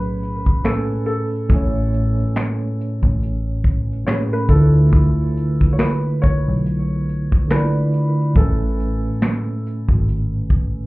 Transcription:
0.00 0.86 B1 medium
0.00 0.62 A2 medium
0.00 0.64 A3 medium
0.00 0.66 C#4 medium
0.00 4.11 G#4 medium
0.00 0.67 B4 loud
0.00 0.69 B4 medium
0.23 closed hi-hat medium
0.46 kick medium
0.62 1.33 A2 medium
0.62 1.34 A3 medium
0.62 1.35 C#4 medium
0.62 1.04 A4 medium
0.62 finger snap medium
0.62 snare loud
0.62 closed hi-hat medium
0.68 1.36 B4 medium
0.68 1.35 G#5 medium
1.06 3.17 A4 medium
1.06 closed hi-hat medium
1.35 closed hi-hat soft
1.48 2.22 A1 loud
1.48 2.81 A2 medium
1.48 2.82 A3 medium
1.48 2.83 C#4 medium
1.48 kick loud
1.48 closed hi-hat medium
1.54 2.85 C#5 medium
1.54 2.84 G#5 medium
1.94 closed hi-hat medium
2.19 closed hi-hat soft
2.36 finger snap medium
2.36 snare loud
2.36 closed hi-hat medium
2.81 closed hi-hat medium
3.03 4.03 A1 medium
3.03 kick medium
3.03 closed hi-hat soft
3.23 closed hi-hat medium
3.64 kick medium
3.64 closed hi-hat medium
3.93 closed hi-hat soft
4.05 4.49 A2 medium
4.05 4.48 A3 medium
4.05 4.51 C#4 medium
4.05 4.12 C#5 loud
4.05 finger snap medium
4.05 snare loud
4.05 closed hi-hat medium
4.09 4.52 G#4 medium
4.09 4.53 B4 medium
4.09 finger snap medium
4.33 4.49 B4 medium
4.48 5.57 D2 medium
4.48 5.88 D3 medium
4.48 5.89 A3 medium
4.48 5.89 E4 medium
4.48 5.69 A4 medium
4.48 kick medium
4.48 closed hi-hat medium
4.53 5.90 F4 medium
4.53 5.91 B4 medium
4.93 kick loud
4.93 closed hi-hat medium
5.37 closed hi-hat medium
5.61 kick medium
5.61 closed hi-hat soft
5.73 5.79 C#5 medium
5.79 6.19 B4 medium
5.79 finger snap medium
5.79 snare loud
5.79 closed hi-hat medium
6.22 7.54 C#5 loud
6.22 kick medium
6.22 closed hi-hat medium
6.48 7.72 B1 medium
6.66 closed hi-hat medium
7.09 closed hi-hat medium
7.32 kick medium
7.48 8.18 D3 medium
7.48 8.19 A3 medium
7.48 8.20 E4 medium
7.48 8.32 B4 medium
7.48 finger snap medium
7.48 snare loud
7.48 closed hi-hat medium
7.52 8.21 F4 medium
7.52 8.22 D5 medium
7.52 finger snap medium
7.93 closed hi-hat medium
8.22 closed hi-hat soft
8.33 9.07 A1 loud
8.33 9.67 A2 medium
8.33 9.68 A3 medium
8.33 9.69 C#4 medium
8.33 10.04 A4 medium
8.33 kick loud
8.33 closed hi-hat medium
8.39 9.71 B4 medium
8.39 9.70 G#5 medium
8.80 closed hi-hat medium
9.22 finger snap medium
9.22 snare loud
9.22 closed hi-hat medium
9.67 closed hi-hat medium
9.89 10.87 G#1 medium
9.89 kick medium
10.08 closed hi-hat medium
10.50 kick medium
10.50 closed hi-hat medium

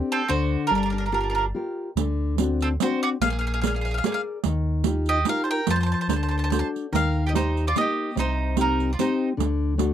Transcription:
0.00 0.21 C4 medium
0.00 0.22 D4 soft
0.00 0.22 G4 medium
0.12 0.30 C4 medium
0.12 0.29 A4 medium
0.28 0.57 D2 medium
0.28 0.70 D3 medium
0.28 0.68 F#4 medium
0.28 0.67 C5 loud
0.67 1.11 G3 medium
0.67 0.76 D4 medium
0.67 0.74 A#4 medium
0.71 1.53 G1 loud
0.71 0.82 A#4 medium
0.78 0.84 D4 soft
0.83 0.91 D4 soft
0.83 0.89 A#4 medium
0.90 0.99 D4 soft
0.90 0.97 A#4 soft
0.98 1.04 D4 soft
0.98 1.05 A#4 soft
1.06 1.11 D4 soft
1.06 1.13 A#4 soft
1.12 1.22 D4 soft
1.12 1.46 F4 soft
1.12 1.46 G4 soft
1.12 1.46 A#4 medium
1.12 1.19 A#4 medium
1.21 1.30 D4 soft
1.21 1.28 A#4 soft
1.30 1.37 D4 soft
1.30 1.34 A#4 soft
1.35 1.46 D4 soft
1.35 1.44 A#4 medium
1.54 1.89 F4 soft
1.54 1.89 G4 soft
1.54 1.89 A#4 soft
1.96 2.78 D2 loud
1.96 2.38 D3 soft
1.96 riq medium
2.38 2.73 C4 soft
2.38 2.73 D4 soft
2.38 2.73 F#4 medium
2.38 riq medium
2.61 2.69 C4 medium
2.61 2.68 A4 medium
2.61 riq soft
2.80 3.15 C4 soft
2.80 3.15 D4 soft
2.80 3.15 F#4 medium
2.80 3.02 F#4 medium
2.80 3.02 C5 medium
2.80 riq medium
3.03 3.09 F#4 medium
3.03 3.08 D5 medium
3.20 4.01 A#1 loud
3.20 3.63 A#3 medium
3.20 3.31 G#4 medium
3.20 3.29 F5 medium
3.20 riq medium
3.30 3.39 G#4 soft
3.30 3.38 F5 medium
3.39 3.46 G#4 medium
3.39 3.46 F5 medium
3.47 3.53 G#4 soft
3.47 3.53 F5 medium
3.54 3.60 G#4 medium
3.54 3.60 F5 medium
3.62 3.66 G#4 soft
3.62 3.96 G#4 soft
3.62 3.96 A#4 soft
3.62 3.97 D5 soft
3.62 3.66 F5 soft
3.62 riq medium
3.67 3.73 G#4 soft
3.67 3.75 F5 medium
3.75 3.80 G#4 soft
3.75 3.83 F5 soft
3.81 3.89 G#4 medium
3.81 3.91 F5 medium
3.86 riq soft
3.91 3.96 G#4 medium
3.91 3.97 F5 medium
3.98 4.04 G#4 soft
3.98 4.05 F5 medium
4.04 4.38 G#4 medium
4.04 4.11 G#4 soft
4.04 4.38 A#4 soft
4.04 4.39 D5 medium
4.04 4.13 F5 medium
4.04 riq medium
4.12 4.20 G#4 soft
4.12 4.21 F5 medium
4.44 5.24 D#2 loud
4.44 4.85 D#3 medium
4.44 riq medium
4.84 5.18 D#4 medium
4.84 5.19 F4 soft
4.84 5.19 G4 soft
4.84 riq medium
5.06 5.26 G4 medium
5.06 5.26 D#5 loud
5.06 riq soft
5.25 5.60 D#4 soft
5.25 5.60 F4 soft
5.25 5.60 G4 soft
5.25 5.43 A#4 medium
5.25 riq medium
5.29 5.43 F5 medium
5.44 5.49 C5 medium
5.44 5.50 A5 soft
5.51 5.68 A#4 medium
5.51 5.68 G5 medium
5.67 5.95 F2 loud
5.67 6.08 F3 medium
5.67 5.75 A5 medium
5.67 riq medium
5.71 5.77 C5 medium
5.76 5.82 A5 medium
5.81 5.85 C5 medium
5.81 5.91 A5 medium
5.86 5.92 C5 medium
5.92 5.99 C5 soft
5.92 5.98 A5 soft
6.01 6.07 C5 soft
6.01 6.07 A5 medium
6.08 6.63 D2 medium
6.08 6.50 D3 medium
6.08 6.15 C5 soft
6.08 6.12 A5 soft
6.08 riq medium
6.13 6.22 C5 soft
6.13 6.21 A5 medium
6.23 6.30 C5 soft
6.23 6.27 A5 soft
6.29 6.36 C5 soft
6.29 6.36 A5 medium
6.38 6.43 C5 soft
6.38 6.43 A5 medium
6.44 6.51 C5 medium
6.44 6.49 A5 medium
6.50 6.85 D4 soft
6.50 6.85 F#4 soft
6.50 6.85 A4 soft
6.50 6.59 C5 soft
6.50 6.58 A5 soft
6.50 riq medium
6.59 6.67 C5 soft
6.59 6.67 A5 medium
6.76 riq soft
6.92 7.74 D#2 loud
6.92 7.33 D#3 medium
6.92 7.23 A#4 medium
6.92 7.24 F5 medium
6.92 riq medium
7.27 7.31 G4 medium
7.27 7.32 D#5 medium
7.33 7.67 D#4 soft
7.33 7.65 D#4 medium
7.33 7.68 G4 medium
7.33 7.66 C5 medium
7.33 7.67 D5 soft
7.33 riq medium
7.57 riq soft
7.67 7.76 F4 medium
7.67 7.77 D5 medium
7.76 8.09 A#3 soft
7.76 8.09 D#4 soft
7.76 8.09 G4 medium
7.76 8.15 D#5 medium
7.76 riq medium
7.81 8.17 G4 medium
8.15 8.96 C2 loud
8.15 8.56 C3 medium
8.15 8.56 D#4 medium
8.15 riq medium
8.20 8.57 C5 medium
8.57 8.90 C4 soft
8.57 8.91 D#4 soft
8.57 8.90 G4 medium
8.57 riq medium
8.61 8.92 D#4 medium
8.61 8.92 A#4 medium
8.80 riq soft
8.93 8.99 F4 soft
8.93 8.99 D5 soft
8.99 9.31 C4 soft
8.99 9.31 D#4 soft
8.99 9.29 D#4 medium
8.99 9.32 G4 soft
8.99 9.28 C5 medium
8.99 riq medium
9.37 9.94 D2 loud
9.37 9.77 D3 medium
9.37 riq medium
9.78 9.94 A3 soft
9.78 9.94 D4 soft
9.78 9.94 F#4 soft
9.78 riq medium

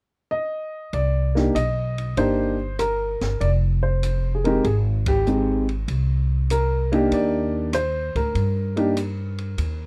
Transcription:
0.31 0.95 D#5 medium
0.93 1.51 C2 medium
0.93 1.51 D5 medium
0.93 kick soft
0.93 ride soft
1.35 1.53 A#3 medium
1.35 1.53 D4 soft
1.35 1.54 D#4 medium
1.35 1.54 G4 medium
1.35 snare soft
1.55 2.13 B1 medium
1.55 2.19 D#5 medium
1.55 hi-hat pedal soft
1.55 ride medium
1.98 ride soft
2.17 3.17 G1 medium
2.17 2.55 A#3 medium
2.17 2.55 D4 medium
2.17 2.56 D#4 medium
2.17 2.56 G4 medium
2.17 2.75 C5 medium
2.17 kick soft
2.17 ride medium
2.79 3.43 A#4 medium
2.79 cross-stick medium
2.79 hi-hat pedal soft
2.79 ride medium
3.21 3.39 G1 medium
3.21 snare soft
3.21 ride soft
3.41 4.60 F1 medium
3.41 3.50 D5 medium
3.41 kick soft
3.41 ride medium
3.83 4.31 C5 medium
4.03 hi-hat pedal medium
4.03 ride medium
4.35 4.45 G#4 medium
4.44 4.63 G#3 medium
4.44 4.63 C4 medium
4.44 4.63 D#4 medium
4.44 4.63 G4 medium
4.44 4.63 A#4 medium
4.44 ride soft
4.64 5.84 G#1 medium
4.64 4.74 G#4 medium
4.64 kick soft
4.64 ride medium
5.06 5.27 G4 medium
5.06 kick medium
5.06 ride medium
5.26 5.64 G#3 medium
5.26 5.65 C4 medium
5.26 5.65 D#4 soft
5.26 5.66 G4 medium
5.26 hi-hat pedal soft
5.69 ride soft
5.88 7.07 C2 medium
5.88 kick soft
5.88 ride medium
6.50 7.08 A#4 medium
6.50 hi-hat pedal medium
6.50 ride medium
6.92 7.69 A#3 medium
6.92 7.70 D4 medium
6.92 7.70 D#4 medium
6.92 7.70 G4 medium
6.92 ride soft
7.12 8.11 D#2 medium
7.12 7.70 D5 medium
7.12 kick soft
7.12 ride medium
7.73 8.13 C5 medium
7.73 cross-stick medium
7.73 hi-hat pedal medium
7.73 ride medium
8.15 8.33 D2 medium
8.15 9.87 A#4 medium
8.15 kick soft
8.15 ride soft
8.35 9.54 G2 medium
8.35 kick soft
8.35 ride medium
8.76 8.94 A#3 medium
8.76 8.94 D4 medium
8.76 8.95 D#4 medium
8.76 8.95 G4 medium
8.76 ride soft
8.97 hi-hat pedal soft
8.97 ride medium
9.38 ride soft
9.58 9.87 D#2 medium
9.58 kick soft
9.58 ride medium

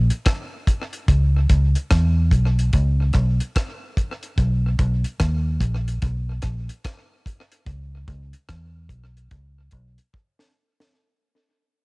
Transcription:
0.10 closed hi-hat medium
0.26 kick loud
0.26 cross-stick loud
0.26 closed hi-hat loud
0.67 kick medium
0.67 closed hi-hat medium
0.93 closed hi-hat soft
1.08 1.47 C#2 medium
1.08 kick loud
1.08 closed hi-hat medium
1.49 1.74 C#2 loud
1.49 kick loud
1.49 closed hi-hat medium
1.75 closed hi-hat medium
1.91 2.30 E2 loud
1.91 kick loud
1.91 cross-stick loud
1.91 closed hi-hat medium
2.31 2.70 B1 medium
2.31 kick medium
2.31 closed hi-hat medium
2.59 closed hi-hat soft
2.73 3.12 C#2 loud
2.73 kick medium
2.73 closed hi-hat medium
3.13 3.39 B1 medium
3.13 kick medium
3.13 cross-stick medium
3.13 closed hi-hat medium
3.40 closed hi-hat medium
3.56 kick loud
3.56 cross-stick loud
3.56 closed hi-hat loud
3.97 kick medium
3.97 closed hi-hat medium
4.23 closed hi-hat soft
4.38 4.77 B1 loud
4.38 kick loud
4.38 closed hi-hat medium
4.79 5.03 B1 loud
4.79 kick loud
4.79 closed hi-hat medium
5.04 closed hi-hat medium
5.20 5.59 D#2 medium
5.20 kick loud
5.20 cross-stick loud
5.20 closed hi-hat medium
5.61 6.00 A#1 medium
5.61 kick medium
5.61 closed hi-hat medium
5.88 closed hi-hat soft
6.02 6.41 B1 loud
6.02 kick loud
6.02 closed hi-hat medium
6.42 6.68 A#1 medium
6.42 kick medium
6.42 cross-stick medium
6.42 closed hi-hat medium
6.69 closed hi-hat medium
6.85 kick loud
6.85 cross-stick loud
6.85 closed hi-hat medium
7.26 kick medium
7.26 closed hi-hat medium
7.52 closed hi-hat soft
7.67 8.05 C#2 loud
7.67 kick loud
7.67 closed hi-hat medium
8.08 8.32 C#2 loud
8.08 kick loud
8.08 closed hi-hat medium
8.33 closed hi-hat medium
8.49 8.88 E2 medium
8.49 kick loud
8.49 cross-stick loud
8.49 closed hi-hat medium
8.89 9.28 B1 loud
8.89 kick medium
8.89 closed hi-hat medium
9.17 closed hi-hat soft
9.31 9.70 C#2 medium
9.31 kick loud
9.31 closed hi-hat medium
9.71 9.97 B1 loud
9.71 kick medium
9.71 closed hi-hat medium
9.98 closed hi-hat medium
10.14 kick loud
10.39 snare medium
10.80 snare medium

